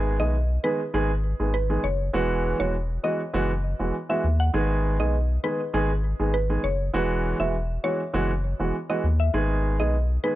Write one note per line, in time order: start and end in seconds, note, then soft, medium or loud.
0.00 0.21 G#1 loud
0.00 0.16 D#3 loud
0.00 0.16 G#3 medium
0.00 0.16 B3 medium
0.00 0.16 G#4 loud
0.20 0.58 B1 loud
0.20 0.34 D#3 medium
0.20 0.34 G#3 medium
0.20 0.34 B3 medium
0.20 0.34 G#4 medium
0.20 0.31 D#5 medium
0.63 0.79 D#3 medium
0.63 0.79 G#3 medium
0.63 0.80 B3 medium
0.63 0.80 G#4 medium
0.63 0.76 B4 medium
0.94 1.34 G#1 loud
0.94 1.09 D#3 loud
0.94 1.09 G#3 medium
0.94 1.10 B3 medium
0.94 1.10 G#4 loud
1.39 1.78 G#1 medium
1.39 1.54 D#3 medium
1.39 1.54 G#3 medium
1.39 1.54 B3 medium
1.39 1.54 G#4 medium
1.54 1.66 B4 medium
1.69 1.83 D#3 medium
1.69 1.84 G#3 medium
1.69 1.84 B3 medium
1.69 1.84 G#4 medium
1.84 2.10 F#1 medium
1.84 1.96 C#5 medium
2.13 2.54 E1 loud
2.13 2.56 E3 medium
2.13 2.56 G#3 medium
2.13 2.56 B3 medium
2.13 2.56 F#4 loud
2.59 2.99 E1 loud
2.59 2.73 E3 medium
2.59 2.74 G#3 medium
2.59 2.74 B3 medium
2.59 2.74 F#4 medium
2.59 2.71 C#5 medium
3.03 3.19 E3 medium
3.03 3.19 G#3 medium
3.03 3.20 B3 medium
3.03 3.20 F#4 medium
3.03 3.16 D#5 medium
3.34 3.74 F#1 loud
3.34 3.49 E3 loud
3.34 3.49 G#3 medium
3.34 3.50 B3 medium
3.34 3.50 F#4 loud
3.79 3.92 E1 medium
3.79 3.93 E3 medium
3.79 3.94 G#3 medium
3.79 3.94 B3 medium
3.79 3.94 F#4 medium
4.09 4.23 E3 medium
4.09 4.24 G#3 medium
4.09 4.24 B3 medium
4.09 4.24 F#4 medium
4.09 4.21 E5 medium
4.24 4.50 D#2 loud
4.40 4.51 F#5 medium
4.53 5.01 G#1 loud
4.53 4.96 D#3 loud
4.53 4.96 G#3 medium
4.53 4.96 B3 medium
4.53 4.96 G#4 loud
4.99 5.39 B1 loud
4.99 5.13 D#3 medium
4.99 5.14 G#3 medium
4.99 5.14 B3 medium
4.99 5.14 G#4 medium
4.99 5.11 D#5 medium
5.43 5.59 D#3 medium
5.43 5.59 G#3 medium
5.43 5.59 B3 medium
5.43 5.60 G#4 medium
5.43 5.56 B4 medium
5.73 6.14 G#1 medium
5.73 5.89 D#3 loud
5.73 5.89 G#3 medium
5.73 5.90 B3 medium
5.73 5.90 G#4 loud
6.19 6.58 G#1 medium
6.19 6.33 D#3 medium
6.19 6.34 G#3 medium
6.19 6.34 B3 medium
6.19 6.34 G#4 medium
6.34 6.46 B4 medium
6.49 6.63 D#3 medium
6.49 6.64 G#3 medium
6.49 6.64 B3 medium
6.49 6.64 G#4 medium
6.64 6.90 F#1 medium
6.64 6.76 C#5 medium
6.94 7.34 E1 loud
6.94 7.36 E3 loud
6.94 7.36 G#3 medium
6.94 7.36 B3 medium
6.94 7.36 F#4 loud
7.40 7.78 E1 loud
7.40 7.54 E3 medium
7.40 7.54 G#3 medium
7.40 7.54 B3 medium
7.40 7.54 F#4 medium
7.40 7.51 E5 medium
7.84 7.99 E3 medium
7.84 7.99 G#3 medium
7.84 8.00 B3 medium
7.84 8.00 F#4 medium
7.84 7.96 C#5 medium
8.14 8.54 F#1 loud
8.14 8.29 E3 loud
8.14 8.29 G#3 medium
8.14 8.30 B3 medium
8.14 8.30 F#4 loud
8.59 8.72 E1 medium
8.59 8.74 E3 medium
8.59 8.74 G#3 medium
8.59 8.74 B3 medium
8.59 8.74 F#4 medium
8.89 9.03 E3 medium
8.89 9.04 G#3 medium
8.89 9.04 B3 medium
8.89 9.04 F#4 medium
8.89 9.01 D#5 medium
9.04 9.30 D#2 loud
9.20 9.31 E5 medium
9.34 9.81 G#1 loud
9.34 9.76 D#3 loud
9.34 9.76 G#3 medium
9.34 9.76 B3 medium
9.34 9.76 G#4 loud
9.79 10.18 B1 loud
9.79 9.93 D#3 medium
9.79 9.94 G#3 medium
9.79 9.94 B3 medium
9.79 9.94 G#4 medium
9.79 9.91 D#5 medium
10.23 10.35 D#3 medium
10.23 10.35 G#3 medium
10.23 10.35 B3 medium
10.23 10.35 G#4 medium
10.23 10.35 B4 medium